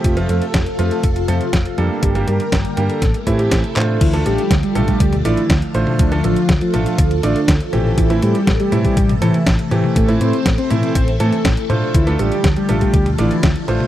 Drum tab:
CC |----------------|----------------|x---------------|----------------|
HH |xxxxxxxxxxxxxxx-|xxxxxxxxxxxxxxx-|xxxxxxxxxxxxxxx-|xxxxxxxxxxxxxxx-|
CP |----------------|--------------x-|----------------|----------------|
SD |----o-------o---|----o---o---o---|----o-------o---|----o-------o---|
T1 |----------------|----------------|------o--o-----o|------o-------o-|
BD |o---o---o---o---|o---o---o-o-o---|o---o--oo---o---|o---o---o---o---|

CC |----------------|----------------|----------------|
HH |xxxxxxxxxxxxxxx-|xxxxxxxxxxxxxxx-|xxxxxxxxxxxxxxx-|
CP |----------------|----------------|----------------|
SD |----o-------o---|----o-------o---|----o-------o---|
T1 |------o--o-----o|------o-------o-|------o--o-----o|
BD |o---o--oo---o---|o---o---o---o---|o---o--oo---o---|